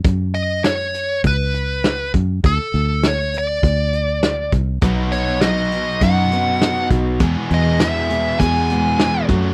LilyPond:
<<
  \new Staff \with { instrumentName = "Lead electric guitar" } { \time 4/4 \key e \major \tempo 4 = 101 r8 dis''8 cis''4 b'4. r8 | a'4 cis''8 d''2 r8 | r8 cis''8 dis''4 fis''4. r8 | r8 dis''8 e''4 gis''4. r8 | }
  \new Staff \with { instrumentName = "Steel-string acoustic guitar" } { \time 4/4 \key e \major r1 | r1 | <b, fis b dis' fis'>4 <fis b dis' fis'>8 <b dis' fis'>8 <fis b dis' fis'>8 <b dis' fis'>4 <b dis' fis'>8 | <e, b, e gis b gis'>4 <e gis b gis'>8 <e gis b gis'>8 <e gis b gis'>8 <e gis b gis'>4 <fis a cis' fis'>8 | }
  \new Staff \with { instrumentName = "Overdriven electric guitar" } { \clef bass \time 4/4 \key e \major r1 | r1 | <b, fis b dis' fis'>2 <b, fis b dis' fis'>2 | <e, b, e gis b gis'>2 <e, b, e gis b gis'>4. <fis, cis fis a cis' fis'>8 | }
  \new Staff \with { instrumentName = "Fingered electric bass" } { \clef bass \time 4/4 \key e \major fis,2 cis,4. fis,8 | d,16 r16 d,4. d,4. c,8 | b,,2 fis,4. b,,8 | e,16 r16 e,4. e,4. fis,8 | }
  \new DrumStaff \with { instrumentName = "Drums" } \drummode { \time 4/4 <hh bd>8 hh8 <hh sn>8 hh8 <hh bd>8 hh8 <hh sn>8 <hh bd>8 | <hh bd>8 hh8 <hh sn>8 hh8 <hh bd>8 hh8 <hh sn>8 <hh bd>8 | <hh bd>8 hh8 <hh sn>8 hh8 <hh bd>8 hh8 <hh sn>8 <hh bd>8 | <hh bd>8 hh8 <hh sn>8 hh8 <hh bd>8 hh8 <hh sn>8 <hh bd>8 | }
>>